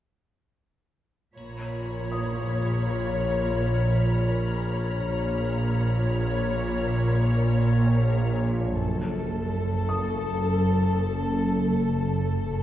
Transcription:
1.36 double bass section A#1, synth drone A#1, cello section A#2, violin section C#5 A#5 B5, triangle
2.12 felt piano D#6
2.87 violin section F6
5.07 synth drone A#1, double bass section A#1, cello section A#2, violin section C#5
8.77 double bass section F#1, synth drone F#1, cello section F#2, violin section A4
9.89 felt piano D#6
12.48 double bass section F#1, synth drone F#1, cello section F#2, violin section A4

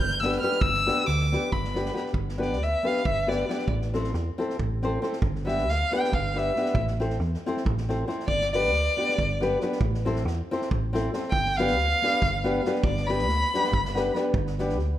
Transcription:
Already playing: violin G6
0.00 fingered electric bass G1
0.09 snare
0.20 nylon-string guitar B3 D4 G4, violin E6, snare
0.25 nylon-string guitar B4
0.32 snare
0.40 nylon-string guitar B3 D4 G4, violin F6, snare
0.44 nylon-string guitar B4
0.52 snare
0.60 fingered electric bass G1, violin E6, kick
0.74 snare
0.86 nylon-string guitar B3 D4 G4 B4, snare
0.97 snare
1.06 fingered electric bass D2, violin D6, snare
1.19 snare
1.32 nylon-string guitar B3 D4 G4 B4, snare
1.52 fingered electric bass G1, violin B5, kick
1.64 snare
1.74 nylon-string guitar B3 D4 G4 B4, snare
1.85 snare
1.93 nylon-string guitar B3 D4 G4 B4, snare
2.06 snare
2.13 fingered electric bass G1, kick
2.29 snare
2.38 nylon-string guitar B3 D4 G4 B4, snare
2.42 violin D5
2.53 snare
2.58 fingered electric bass D2, snare
2.63 violin E5
2.83 nylon-string guitar B3 D4 G4 B4, violin F5
2.87 snare
2.97 snare
3.05 fingered electric bass G1, violin E5, kick
3.27 nylon-string guitar B3 D4 G4 B4, violin D5, snare
3.49 nylon-string guitar B3 D4 G4 B4, snare
3.59 snare
3.68 fingered electric bass A1, kick
3.81 snare
3.94 nylon-string guitar C4 E4 A4 C5, snare
4.04 snare
4.14 fingered electric bass E2, snare
4.38 nylon-string guitar C4 E4 A4 C5, snare
4.50 snare
4.59 fingered electric bass A1, kick
4.82 nylon-string guitar C4 E4 A4 C5, snare
5.02 nylon-string guitar C4 E4 A4 C5, snare
5.13 snare
5.22 fingered electric bass G1, kick
5.35 snare
5.45 nylon-string guitar B3 D4 G4 B4, violin E5, snare
5.58 snare
5.68 fingered electric bass D2, violin F5, snare
5.91 nylon-string guitar B3 D4 G4 B4, violin G5, snare
6.04 snare
6.12 fingered electric bass G1, violin F5, kick
6.34 nylon-string guitar B3 D4 G4 B4, violin E5, snare
6.56 nylon-string guitar B3 D4 G4 B4, snare
6.66 snare
6.74 fingered electric bass A1, kick
6.87 snare
7.00 nylon-string guitar C4 E4 A4 C5, snare
7.10 snare
7.20 fingered electric bass E2, snare
7.34 snare
7.46 nylon-string guitar C4 E4 A4 C5, snare
7.57 snare
7.65 fingered electric bass A1, kick
7.77 snare
7.89 nylon-string guitar C4 E4 A4 C5, snare
8.07 nylon-string guitar C4 E4 A4 C5, snare
8.20 snare
8.27 fingered electric bass G1, violin D5, kick
8.41 snare
8.53 nylon-string guitar B3 D4 G4 B4, violin D5, snare
8.63 snare
8.72 fingered electric bass D2, snare
8.97 nylon-string guitar B3 D4 G4 B4, snare
9.09 snare
9.18 fingered electric bass G1, kick
9.40 nylon-string guitar B3 D4 G4 B4, snare
9.61 nylon-string guitar B3 D4 G4 B4, snare
9.72 snare
9.81 fingered electric bass A1, kick
9.94 snare
10.05 nylon-string guitar C4 E4 A4 C5, snare
10.16 snare
10.25 fingered electric bass E2, snare
10.51 nylon-string guitar C4 E4 A4 C5, snare
10.61 snare
10.71 fingered electric bass A1, kick
10.93 nylon-string guitar C4 E4 A4 C5, snare
11.13 nylon-string guitar C4 E4 A4 C5, snare
11.23 snare
11.30 fingered electric bass G1, violin G5, kick
11.45 snare
11.57 nylon-string guitar B3 D4 G4 B4, violin F5, snare
11.67 snare
11.78 fingered electric bass D2, snare
12.02 nylon-string guitar B3 D4 G4 B4, snare
12.11 snare
12.22 fingered electric bass G1, kick
12.44 nylon-string guitar B3 D4 G4 B4, snare
12.65 nylon-string guitar B3 D4 G4 B4, snare
12.75 snare
12.83 fingered electric bass G1, violin D5, kick
12.97 snare
13.07 nylon-string guitar B3 D4 G4 B4, violin B5, snare
13.18 snare
13.27 fingered electric bass D2, snare
13.41 snare
13.54 nylon-string guitar B3 D4 G4 B4, snare
13.64 snare
13.72 fingered electric bass G1, kick
13.85 snare
13.94 nylon-string guitar B3 D4 G4 B4, snare
14.05 snare
14.14 nylon-string guitar B3 D4 G4 B4, snare
14.33 fingered electric bass G1, kick
14.47 snare
14.59 nylon-string guitar B3 D4 G4 B4, snare
14.69 snare
14.79 fingered electric bass D2, snare

